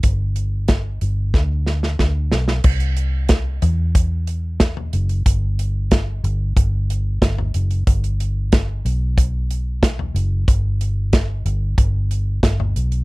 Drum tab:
CC |----------------|x---------------|----------------|----------------|
HH |x-x-x-x---------|-xx-x-x-x-x-x-xx|x-x-x-x-x-x-x-xx|xxx-x-x-x-x-x-x-|
SD |----o---o-ooo-oo|----o-------o---|----o-------o---|----o-------o---|
FT |----------------|------o------o--|-------------o--|-------------o--|
BD |o---o---o---o---|o---o---o---o---|o---o---o---o---|o---o---o---o---|

CC |----------------|
HH |x-x-x-x-x-x-x-xx|
SD |----o-------o---|
FT |-------------o--|
BD |o---o---o---o---|